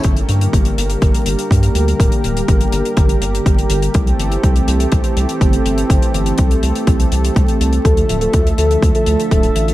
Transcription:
0.03 analog synth bass G1, analog synth pad D3 G3 A#3 G4 A#4, analog polysynth A#3 D4 G4 A#4, kick, closed hi-hat
0.16 closed hi-hat
0.29 analog synth bass G2, closed hi-hat
0.41 closed hi-hat
0.53 analog synth bass G1, kick, closed hi-hat
0.65 closed hi-hat
0.78 analog synth bass G1, closed hi-hat
0.90 closed hi-hat
1.02 analog synth bass G1, kick, closed hi-hat
1.15 closed hi-hat
1.26 analog synth bass G1, closed hi-hat
1.39 closed hi-hat
1.51 analog synth bass G2, kick, closed hi-hat
1.63 closed hi-hat
1.75 analog synth bass D2, closed hi-hat
1.88 closed hi-hat
2.00 analog synth bass D1, kick, closed hi-hat
2.12 closed hi-hat
2.24 analog synth bass D1, closed hi-hat
2.37 closed hi-hat
2.48 analog synth bass G1, kick, closed hi-hat
2.61 closed hi-hat
2.72 analog synth bass G1, closed hi-hat
2.85 closed hi-hat
2.97 analog synth bass G1, kick, closed hi-hat
3.09 closed hi-hat
3.22 analog synth bass G1, closed hi-hat
3.35 closed hi-hat
3.46 analog synth bass G1, kick, closed hi-hat
3.58 closed hi-hat
3.70 analog synth bass G1, closed hi-hat
3.82 closed hi-hat
3.94 analog synth bass C2, analog synth pad E3 A3 C4 A4, analog polysynth C4 E4 G4 A4, kick, closed hi-hat
4.07 closed hi-hat
4.19 analog synth bass G1, closed hi-hat
4.32 closed hi-hat
4.44 analog synth bass C2, kick, closed hi-hat
4.56 closed hi-hat
4.68 analog synth bass C2, closed hi-hat
4.80 closed hi-hat
4.92 analog synth bass C2, kick, closed hi-hat
5.04 closed hi-hat
5.17 analog synth bass C2, closed hi-hat
5.29 closed hi-hat
5.41 analog synth bass G1, kick, closed hi-hat
5.53 closed hi-hat
5.65 analog synth bass G1, closed hi-hat
5.78 closed hi-hat
5.90 analog synth bass G1, kick, closed hi-hat
6.02 closed hi-hat
6.14 analog synth bass G1, closed hi-hat
6.26 closed hi-hat
6.38 analog synth bass C2, kick, closed hi-hat
6.51 closed hi-hat
6.63 analog synth bass C2, closed hi-hat
6.76 closed hi-hat
6.87 analog synth bass C2, kick, closed hi-hat
7.00 closed hi-hat
7.12 analog synth bass C2, closed hi-hat
7.24 closed hi-hat
7.36 analog synth bass C2, kick, closed hi-hat
7.48 closed hi-hat
7.61 analog synth bass C2, closed hi-hat
7.73 closed hi-hat
7.85 analog synth bass D2, analog synth pad D3 F3 E5, analog polysynth D4 E4 F4 A4, soft synth lead A4, kick, closed hi-hat
7.97 closed hi-hat
8.09 analog synth bass D1, closed hi-hat
8.21 soft synth lead A4, closed hi-hat
8.33 analog synth bass D2, kick, closed hi-hat
8.47 closed hi-hat
8.58 analog synth bass D2, soft synth lead A4, closed hi-hat
8.71 closed hi-hat
8.82 analog synth bass D2, kick, closed hi-hat
8.95 soft synth lead A4, closed hi-hat
9.06 analog synth bass D2, closed hi-hat
9.20 closed hi-hat
9.31 analog synth bass D1, soft synth lead A4, kick, closed hi-hat
9.43 closed hi-hat
9.56 analog synth bass A1, closed hi-hat
9.68 closed hi-hat

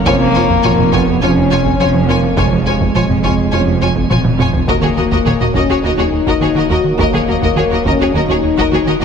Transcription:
0.06 sub bass F1, double bass section F1, cello section F2, analog synth bass F2, trombone section F3 C#4, french horn section A#3, viola section F4, violin section C#5 G#5, taiko
0.21 analog synth bass F3
0.35 analog synth bass F2, viola section F4, violin section C#5 G#5
0.50 analog synth bass F2, taiko
0.63 double bass section F1, cello section F2, analog synth bass F3, viola section F4, violin section C#5 G#5, taiko mid
0.78 analog synth bass F2, taiko mid
0.92 analog synth bass F2, french horn section B3, viola section F4, violin section C#5 G#5, taiko
1.08 analog synth bass F2
1.22 double bass section F1, cello section F2, analog synth bass F2, trombone section F3 C#4, french horn section C#4, viola section F4, violin section C#5 G#5
1.37 analog synth bass F2
1.51 analog synth bass F2, viola section F4, violin section C#5 G#5
1.65 analog synth bass F2, taiko
1.80 double bass section F1, cello section F2, analog synth bass F3, viola section F4, violin section C#5 G#5
1.94 analog synth bass F3
2.08 analog synth bass F2, french horn section A#3, viola section F4, violin section C#5 G#5
2.23 analog synth bass F3
2.37 double bass section F1, analog synth bass F2, cello section F2, trombone section F3 C#4, french horn section G#3, viola section F4, violin section C#5 G#5, taiko
2.52 analog synth bass F3
2.66 analog synth bass F2, viola section F4, violin section C#5 G#5
2.81 analog synth bass F2, taiko
2.95 double bass section F1, cello section F2, analog synth bass F3, viola section F4, violin section C#5 G#5, taiko mid
3.09 analog synth bass F2, taiko mid
3.23 analog synth bass F2, viola section F4, violin section C#5 G#5, taiko
3.38 analog synth bass F2
3.52 double bass section F1, analog synth bass F2, cello section F2, trombone section F3 C#4, viola section F4, violin section C#5 G#5
3.66 analog synth bass F2
3.81 analog synth bass F2, viola section F4, violin section C#5 G#5
3.96 analog synth bass F2, taiko
4.10 double bass section F1, cello section F2, analog synth bass F3, viola section F4, violin section C#5 G#5, taiko mid
4.24 analog synth bass F3, taiko mid
4.39 analog synth bass F2, viola section F4, violin section C#5 G#5, taiko mid
4.53 analog synth bass F3, taiko low
4.67 sub bass D#1, analog synth bass D#2, double bass section D#2, cello section D#2, trombone section F#3 A#3, french horn section A#3, viola section F#4, violin section A#4 D#5, taiko
4.81 cello section D#2, analog synth bass D#3, viola section F#4, violin section G#4 C#5
4.97 analog synth bass D#2, cello section D#2, double bass section D#2, viola section F#4, violin section A#4 D#5
5.11 analog synth bass D#2, cello section D#2, viola section F#4, violin section A#4 D#5, taiko
5.25 cello section D#2, double bass section D#2, analog synth bass D#3, viola section F#4, violin section G#4 C#5, taiko mid
5.40 cello section D#2, analog synth bass D#2, viola section F#4, violin section A#4 D#5, taiko mid
5.54 cello section D#2, analog synth bass D#2, double bass section D#2, french horn section C#4, viola section F#4, violin section A#4 D#5, taiko
5.69 cello section D#2, analog synth bass D#2, viola section F#4, violin section G#4 C#5
5.83 double bass section D#2, analog synth bass D#2, cello section D#2, french horn section D#4, viola section F#4, violin section A#4 D#5
5.98 analog synth bass D#2, cello section D#2, viola section F#4, violin section G#4 C#5
6.12 analog synth bass D#2
6.26 analog synth bass D#2, cello section D#2, viola section F#4, violin section A#4 D#5, taiko
6.40 double bass section D#2, cello section D#2, analog synth bass D#3, viola section F#4, violin section G#4 C#5
6.55 cello section D#2, analog synth bass D#3, viola section F#4, violin section A#4 D#5
6.69 analog synth bass D#2, cello section D#2, double bass section D#2, viola section F#4, french horn section F#4, violin section A#4 D#5
6.84 analog synth bass D#3
6.98 analog synth bass D#2, cello section D#2, double bass section D#2, french horn section A#3, viola section F#4, violin section A#4 D#5, taiko
7.13 cello section D#2, analog synth bass D#3, viola section F#4, violin section G#4 C#5
7.27 cello section D#2, analog synth bass D#2, double bass section D#2, viola section F#4, violin section A#4 D#5
7.41 cello section D#2, analog synth bass D#2, viola section F#4, violin section A#4 D#5, taiko
7.56 double bass section D#2, cello section D#2, analog synth bass D#3, viola section F#4, violin section G#4 C#5
7.71 analog synth bass D#2, cello section D#2, viola section F#4, violin section A#4 D#5
7.84 analog synth bass D#2, cello section D#2, double bass section D#2, french horn section C#4, viola section F#4, violin section A#4 D#5, taiko
7.99 analog synth bass D#2, cello section D#2, viola section F#4, violin section G#4 C#5
8.14 cello section D#2, analog synth bass D#2, double bass section D#2, french horn section D#4, viola section F#4, violin section A#4 D#5
8.28 analog synth bass D#2, cello section D#2, viola section F#4, violin section G#4 C#5
8.43 analog synth bass D#2
8.57 cello section D#2, analog synth bass D#2, viola section F#4, violin section A#4 D#5, taiko
8.72 cello section D#2, double bass section D#2, analog synth bass D#3, viola section F#4, violin section G#4 C#5
8.86 cello section D#2, analog synth bass D#3, viola section F#4, violin section A#4 D#5
8.99 cello section D#2, double bass section D#2, analog synth bass D#2, french horn section F#4, viola section F#4, violin section A#4 D#5

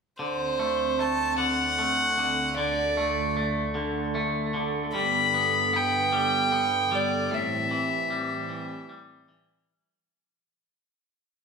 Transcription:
0.19 analog synth pad D2 D3 C4 A4, clean electric guitar D3, violin C5
0.59 clean electric guitar A3
0.99 clean electric guitar A3, violin A5
1.38 clean electric guitar D3, violin F#5
1.78 clean electric guitar A3
2.18 clean electric guitar D3
2.58 clean electric guitar D3, analog synth pad A3, violin D5
2.97 clean electric guitar A3
3.37 clean electric guitar A3
3.75 clean electric guitar D3
4.15 clean electric guitar A3
4.54 clean electric guitar D3
4.94 analog synth pad G2 B3, clean electric guitar G3, violin B5
5.34 clean electric guitar B3
5.73 clean electric guitar B3, violin G5
6.12 clean electric guitar G3
6.52 clean electric guitar B3
6.91 clean electric guitar G3, violin D5
7.30 analog synth pad A2 E3 C4 G4, clean electric guitar A2
7.34 violin E5
7.71 clean electric guitar E3
8.10 clean electric guitar G3
8.49 clean electric guitar E3
8.89 clean electric guitar G3
9.29 clean electric guitar E3

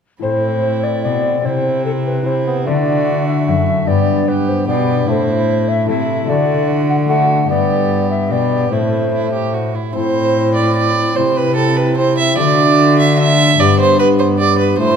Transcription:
0.19 cello A2, bassoon C4, harp E4 A4 C5, violin E4, recorder C5
0.23 harp A2
0.83 recorder D5
1.03 cello B2, harp B2, recorder D5
1.42 cello C3, harp C3 E4 G4 C5, bassoon C4, violin E4
1.46 recorder C5
1.86 recorder A4
2.06 recorder B4
2.23 bassoon C4, harp E4 G4 C5, violin E4, recorder C5
2.47 bassoon B3
2.64 cello D3, bassoon A3, harp D4 F#4 A4, violin F#4, recorder D5
2.68 harp D3
3.28 recorder E5
3.47 cello F#2, harp F#2, recorder E5
3.85 cello G2, bassoon B3, harp D4 G4 B4, violin G4, recorder D5
3.89 harp G2
4.27 bassoon B3, violin G4, recorder B4
4.49 recorder C5
4.64 harp B2 D4 G4 B4, cello B2, bassoon B3, violin G4, recorder D5
5.05 cello A2, harp A2 A3 E4 A4, bassoon A3, violin E4, recorder C5
5.68 recorder E5
5.85 harp C3 A3 E4 A4, cello C3, violin E4
5.89 bassoon A3, recorder E5
6.25 cello D3, harp A3 F#4 A4, recorder D5
6.29 harp D3, bassoon A3, violin F#4
6.90 recorder F#5
7.05 harp A3 F#4 A4
7.10 bassoon A3, violin F#4, recorder F#5
7.46 harp G2 G4 B4, cello G2, violin G4, recorder D5
7.51 bassoon B3
8.10 recorder E5
8.29 cello B2, harp B2 G4 B4, bassoon B3, violin G4, recorder D5
8.69 cello A2, harp A2 C4 E4 A4, bassoon A3, violin E4, recorder C5
9.12 violin E4
9.33 violin G4
9.54 violin F#4
9.75 violin E4
9.93 cello A2, harp A2 C4 E4 A4, bassoon C4, recorder E4, violin C5
10.55 violin D5
10.76 violin D5
11.13 cello C3, harp C3 C4 E4 G4, bassoon C4, recorder E4, violin C5
11.36 violin B4
11.56 violin A4
11.76 violin B4
11.97 bassoon C4, recorder E4, violin C5
12.18 violin E5
12.36 cello D3, harp D3 A3 D4 F#4, bassoon A3, recorder G4, violin D5
12.42 recorder F#4
12.99 violin E5
13.19 violin E5
13.57 cello G2, harp G2 B3 D4 G4, bassoon B3, recorder G4, violin D5
13.80 violin C5
13.99 bassoon B3, recorder G4, violin B4
14.19 violin C5
14.38 bassoon B3, recorder G4, violin D5
14.59 violin B4
14.77 cello A2, harp A2 A3 E4, bassoon A3, recorder E4, violin C5

